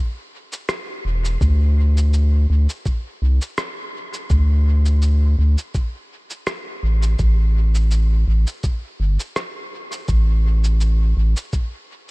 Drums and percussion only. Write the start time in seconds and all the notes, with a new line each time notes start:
0.53 cabasa
0.69 cross-stick, cabasa
1.25 cabasa
1.41 kick, cabasa
1.97 cabasa
2.13 cabasa
2.69 cabasa
2.86 kick, cabasa
3.42 cabasa
3.58 cross-stick, cabasa
4.14 cabasa
4.30 kick, cabasa
4.86 cabasa
5.02 cabasa
5.58 cabasa
5.75 kick, cabasa
6.30 cabasa
6.47 cross-stick, cabasa
7.03 cabasa
7.19 kick, cabasa
7.75 cabasa
7.91 cabasa
8.47 cabasa
8.64 kick, cabasa
9.20 cabasa
9.36 cross-stick, cabasa
9.92 cabasa
10.08 kick, cabasa
10.64 cabasa
10.81 cabasa
11.37 cabasa
11.53 kick, cabasa